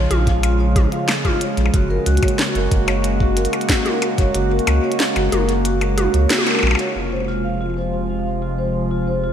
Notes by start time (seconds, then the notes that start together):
Already playing: C#3 F3 G#3 F4
0.11 A#1 F4, closed hi-hat, high tom
0.27 F5, kick, closed hi-hat
0.43 F4, closed hi-hat, percussion blips
0.60 C#5
0.76 F4, kick, closed hi-hat, high tom
0.92 F5, closed hi-hat
1.09 snare, closed hi-hat, percussion blips
1.25 F4, kick, closed hi-hat, high tom
1.41 C#5, closed hi-hat
1.57 A#1, closed hi-hat
1.66 percussion blips
1.74 F#1 A#3 F#4, kick, closed hi-hat
1.90 A#4
2.06 C#2 F#4, closed hi-hat
2.17 closed hi-hat
2.23 C#5, kick, closed hi-hat, percussion blips
2.28 closed hi-hat
2.39 F#4, snare, closed hi-hat
2.55 F#1 A#4, closed hi-hat
2.71 F#1 F#4, kick, closed hi-hat
2.88 C#5, closed hi-hat, percussion blips
3.04 closed hi-hat
3.20 F#4, kick
3.37 A#4, closed hi-hat
3.45 closed hi-hat
3.53 closed hi-hat, percussion blips
3.61 closed hi-hat
3.69 F#4, kick, snare, closed hi-hat
3.86 A#4, closed hi-hat, high tom
4.02 F#4, closed hi-hat, percussion blips
4.18 F#1 C#5, kick, closed hi-hat
4.34 F#1 F#4, closed hi-hat
4.51 A#4
4.59 closed hi-hat
4.67 C#2 F#4, closed hi-hat, percussion blips
4.83 C#5
4.92 closed hi-hat
5.00 snare, closed hi-hat
5.16 F#1 F#4, closed hi-hat, percussion blips
5.32 F#1 A#4, closed hi-hat, high tom
5.49 closed hi-hat
5.65 F#4, closed hi-hat
5.81 A#4, closed hi-hat, percussion blips
5.98 F#4, closed hi-hat, high tom
6.14 C#2 C#5, closed hi-hat
6.30 F#4, snare, closed hi-hat
6.38 high tom
6.46 A#4, closed hi-hat, percussion blips
6.51 percussion blips
6.55 percussion blips
6.59 A#1, percussion blips
6.63 F#4, percussion blips
6.67 percussion blips
6.71 percussion blips
6.75 C#5, percussion blips
6.79 closed hi-hat
6.95 F1 C3 F3 G#3 F4
7.12 C5
7.28 F4
7.44 F5
7.61 F4
7.77 C5
7.93 F4
8.10 F5
8.42 F4
8.58 C5
8.91 F4
9.07 C5
9.24 F4